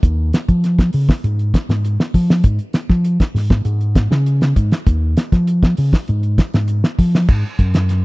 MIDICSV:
0, 0, Header, 1, 4, 480
1, 0, Start_track
1, 0, Tempo, 604839
1, 17, Time_signature, 4, 2, 24, 8
1, 6388, End_track
2, 0, Start_track
2, 0, Title_t, "Fingered electric bass"
2, 0, Program_c, 0, 33
2, 28, Note_on_c, 0, 39, 98
2, 242, Note_off_c, 0, 39, 0
2, 383, Note_on_c, 0, 53, 86
2, 709, Note_off_c, 0, 53, 0
2, 745, Note_on_c, 0, 49, 88
2, 853, Note_off_c, 0, 49, 0
2, 983, Note_on_c, 0, 44, 97
2, 1200, Note_off_c, 0, 44, 0
2, 1340, Note_on_c, 0, 44, 77
2, 1559, Note_off_c, 0, 44, 0
2, 1702, Note_on_c, 0, 53, 101
2, 1920, Note_off_c, 0, 53, 0
2, 1932, Note_on_c, 0, 44, 96
2, 2046, Note_off_c, 0, 44, 0
2, 2297, Note_on_c, 0, 53, 92
2, 2518, Note_off_c, 0, 53, 0
2, 2655, Note_on_c, 0, 44, 81
2, 2876, Note_off_c, 0, 44, 0
2, 2895, Note_on_c, 0, 44, 101
2, 3227, Note_off_c, 0, 44, 0
2, 3259, Note_on_c, 0, 49, 93
2, 3587, Note_off_c, 0, 49, 0
2, 3619, Note_on_c, 0, 44, 88
2, 3730, Note_off_c, 0, 44, 0
2, 3865, Note_on_c, 0, 39, 97
2, 4082, Note_off_c, 0, 39, 0
2, 4226, Note_on_c, 0, 53, 86
2, 4551, Note_off_c, 0, 53, 0
2, 4588, Note_on_c, 0, 49, 86
2, 4695, Note_off_c, 0, 49, 0
2, 4832, Note_on_c, 0, 44, 96
2, 5046, Note_off_c, 0, 44, 0
2, 5191, Note_on_c, 0, 44, 81
2, 5406, Note_off_c, 0, 44, 0
2, 5546, Note_on_c, 0, 53, 86
2, 5762, Note_off_c, 0, 53, 0
2, 5782, Note_on_c, 0, 44, 93
2, 5892, Note_off_c, 0, 44, 0
2, 6023, Note_on_c, 0, 42, 88
2, 6388, Note_off_c, 0, 42, 0
2, 6388, End_track
3, 0, Start_track
3, 0, Title_t, "Muted fingered electric bass strokes"
3, 2172, Note_on_c, 9, 29, 36
3, 2252, Note_off_c, 9, 29, 0
3, 6388, End_track
4, 0, Start_track
4, 0, Title_t, "Drums"
4, 23, Note_on_c, 9, 36, 94
4, 23, Note_on_c, 9, 42, 66
4, 102, Note_off_c, 9, 42, 0
4, 103, Note_off_c, 9, 36, 0
4, 265, Note_on_c, 9, 42, 50
4, 270, Note_on_c, 9, 38, 74
4, 344, Note_off_c, 9, 42, 0
4, 350, Note_off_c, 9, 38, 0
4, 385, Note_on_c, 9, 36, 63
4, 385, Note_on_c, 9, 42, 33
4, 464, Note_off_c, 9, 36, 0
4, 464, Note_off_c, 9, 42, 0
4, 506, Note_on_c, 9, 42, 69
4, 512, Note_on_c, 9, 38, 30
4, 585, Note_off_c, 9, 42, 0
4, 591, Note_off_c, 9, 38, 0
4, 623, Note_on_c, 9, 36, 67
4, 623, Note_on_c, 9, 42, 33
4, 628, Note_on_c, 9, 38, 55
4, 702, Note_off_c, 9, 42, 0
4, 703, Note_off_c, 9, 36, 0
4, 708, Note_off_c, 9, 38, 0
4, 736, Note_on_c, 9, 46, 68
4, 815, Note_off_c, 9, 46, 0
4, 863, Note_on_c, 9, 36, 63
4, 869, Note_on_c, 9, 38, 75
4, 942, Note_off_c, 9, 36, 0
4, 948, Note_off_c, 9, 38, 0
4, 985, Note_on_c, 9, 42, 74
4, 1064, Note_off_c, 9, 42, 0
4, 1105, Note_on_c, 9, 42, 35
4, 1185, Note_off_c, 9, 42, 0
4, 1222, Note_on_c, 9, 36, 66
4, 1225, Note_on_c, 9, 42, 60
4, 1230, Note_on_c, 9, 38, 75
4, 1301, Note_off_c, 9, 36, 0
4, 1304, Note_off_c, 9, 42, 0
4, 1310, Note_off_c, 9, 38, 0
4, 1344, Note_on_c, 9, 42, 34
4, 1349, Note_on_c, 9, 38, 66
4, 1423, Note_off_c, 9, 42, 0
4, 1429, Note_off_c, 9, 38, 0
4, 1465, Note_on_c, 9, 42, 73
4, 1544, Note_off_c, 9, 42, 0
4, 1587, Note_on_c, 9, 38, 69
4, 1667, Note_off_c, 9, 38, 0
4, 1700, Note_on_c, 9, 36, 62
4, 1701, Note_on_c, 9, 46, 59
4, 1779, Note_off_c, 9, 36, 0
4, 1780, Note_off_c, 9, 46, 0
4, 1827, Note_on_c, 9, 38, 75
4, 1906, Note_off_c, 9, 38, 0
4, 1933, Note_on_c, 9, 42, 78
4, 1936, Note_on_c, 9, 36, 92
4, 2013, Note_off_c, 9, 42, 0
4, 2016, Note_off_c, 9, 36, 0
4, 2053, Note_on_c, 9, 42, 32
4, 2133, Note_off_c, 9, 42, 0
4, 2169, Note_on_c, 9, 42, 52
4, 2175, Note_on_c, 9, 38, 66
4, 2248, Note_off_c, 9, 42, 0
4, 2254, Note_off_c, 9, 38, 0
4, 2298, Note_on_c, 9, 36, 66
4, 2300, Note_on_c, 9, 38, 29
4, 2377, Note_off_c, 9, 36, 0
4, 2379, Note_off_c, 9, 38, 0
4, 2416, Note_on_c, 9, 42, 66
4, 2496, Note_off_c, 9, 42, 0
4, 2538, Note_on_c, 9, 42, 32
4, 2539, Note_on_c, 9, 36, 61
4, 2544, Note_on_c, 9, 38, 58
4, 2618, Note_off_c, 9, 42, 0
4, 2619, Note_off_c, 9, 36, 0
4, 2623, Note_off_c, 9, 38, 0
4, 2667, Note_on_c, 9, 46, 65
4, 2672, Note_on_c, 9, 38, 31
4, 2746, Note_off_c, 9, 46, 0
4, 2751, Note_off_c, 9, 38, 0
4, 2778, Note_on_c, 9, 42, 29
4, 2780, Note_on_c, 9, 36, 69
4, 2784, Note_on_c, 9, 38, 69
4, 2857, Note_off_c, 9, 42, 0
4, 2859, Note_off_c, 9, 36, 0
4, 2863, Note_off_c, 9, 38, 0
4, 2896, Note_on_c, 9, 42, 67
4, 2975, Note_off_c, 9, 42, 0
4, 3021, Note_on_c, 9, 42, 31
4, 3101, Note_off_c, 9, 42, 0
4, 3138, Note_on_c, 9, 36, 65
4, 3138, Note_on_c, 9, 42, 50
4, 3143, Note_on_c, 9, 38, 76
4, 3217, Note_off_c, 9, 36, 0
4, 3217, Note_off_c, 9, 42, 0
4, 3222, Note_off_c, 9, 38, 0
4, 3266, Note_on_c, 9, 38, 69
4, 3345, Note_off_c, 9, 38, 0
4, 3384, Note_on_c, 9, 42, 65
4, 3463, Note_off_c, 9, 42, 0
4, 3501, Note_on_c, 9, 42, 32
4, 3507, Note_on_c, 9, 38, 67
4, 3581, Note_off_c, 9, 42, 0
4, 3586, Note_off_c, 9, 38, 0
4, 3621, Note_on_c, 9, 36, 64
4, 3622, Note_on_c, 9, 42, 49
4, 3700, Note_off_c, 9, 36, 0
4, 3701, Note_off_c, 9, 42, 0
4, 3742, Note_on_c, 9, 42, 33
4, 3747, Note_on_c, 9, 38, 71
4, 3821, Note_off_c, 9, 42, 0
4, 3826, Note_off_c, 9, 38, 0
4, 3861, Note_on_c, 9, 42, 68
4, 3862, Note_on_c, 9, 36, 89
4, 3940, Note_off_c, 9, 42, 0
4, 3941, Note_off_c, 9, 36, 0
4, 4101, Note_on_c, 9, 42, 50
4, 4106, Note_on_c, 9, 38, 70
4, 4180, Note_off_c, 9, 42, 0
4, 4186, Note_off_c, 9, 38, 0
4, 4224, Note_on_c, 9, 36, 68
4, 4225, Note_on_c, 9, 42, 32
4, 4230, Note_on_c, 9, 38, 27
4, 4304, Note_off_c, 9, 36, 0
4, 4304, Note_off_c, 9, 42, 0
4, 4310, Note_off_c, 9, 38, 0
4, 4344, Note_on_c, 9, 42, 68
4, 4423, Note_off_c, 9, 42, 0
4, 4465, Note_on_c, 9, 36, 63
4, 4467, Note_on_c, 9, 42, 29
4, 4472, Note_on_c, 9, 38, 65
4, 4544, Note_off_c, 9, 36, 0
4, 4546, Note_off_c, 9, 42, 0
4, 4552, Note_off_c, 9, 38, 0
4, 4580, Note_on_c, 9, 46, 63
4, 4659, Note_off_c, 9, 46, 0
4, 4705, Note_on_c, 9, 36, 63
4, 4710, Note_on_c, 9, 38, 73
4, 4784, Note_off_c, 9, 36, 0
4, 4789, Note_off_c, 9, 38, 0
4, 4823, Note_on_c, 9, 42, 69
4, 4902, Note_off_c, 9, 42, 0
4, 4945, Note_on_c, 9, 42, 36
4, 5024, Note_off_c, 9, 42, 0
4, 5064, Note_on_c, 9, 36, 61
4, 5065, Note_on_c, 9, 42, 54
4, 5070, Note_on_c, 9, 38, 72
4, 5143, Note_off_c, 9, 36, 0
4, 5144, Note_off_c, 9, 42, 0
4, 5150, Note_off_c, 9, 38, 0
4, 5186, Note_on_c, 9, 42, 34
4, 5192, Note_on_c, 9, 38, 70
4, 5266, Note_off_c, 9, 42, 0
4, 5271, Note_off_c, 9, 38, 0
4, 5299, Note_on_c, 9, 42, 72
4, 5378, Note_off_c, 9, 42, 0
4, 5427, Note_on_c, 9, 38, 72
4, 5507, Note_off_c, 9, 38, 0
4, 5544, Note_on_c, 9, 36, 62
4, 5544, Note_on_c, 9, 46, 61
4, 5623, Note_off_c, 9, 36, 0
4, 5624, Note_off_c, 9, 46, 0
4, 5673, Note_on_c, 9, 38, 70
4, 5752, Note_off_c, 9, 38, 0
4, 5780, Note_on_c, 9, 49, 89
4, 5783, Note_on_c, 9, 36, 93
4, 5860, Note_off_c, 9, 49, 0
4, 5862, Note_off_c, 9, 36, 0
4, 6019, Note_on_c, 9, 42, 49
4, 6022, Note_on_c, 9, 36, 69
4, 6099, Note_off_c, 9, 42, 0
4, 6102, Note_off_c, 9, 36, 0
4, 6142, Note_on_c, 9, 42, 55
4, 6147, Note_on_c, 9, 38, 73
4, 6221, Note_off_c, 9, 42, 0
4, 6227, Note_off_c, 9, 38, 0
4, 6262, Note_on_c, 9, 42, 66
4, 6268, Note_on_c, 9, 38, 30
4, 6341, Note_off_c, 9, 42, 0
4, 6347, Note_off_c, 9, 38, 0
4, 6388, End_track
0, 0, End_of_file